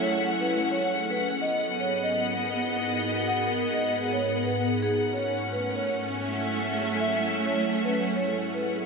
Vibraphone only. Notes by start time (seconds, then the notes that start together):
0.02 C#5
0.40 B4
0.72 C#5
1.10 B4
1.41 D#5
1.80 C#5
2.03 D#5
3.28 F#5
3.74 D#5
4.13 C#5
4.44 B4
4.83 G#4
5.13 C#5
5.52 B4
5.76 C#5
7.00 E5
7.46 C#5
7.85 B4
8.16 C#5
8.54 B4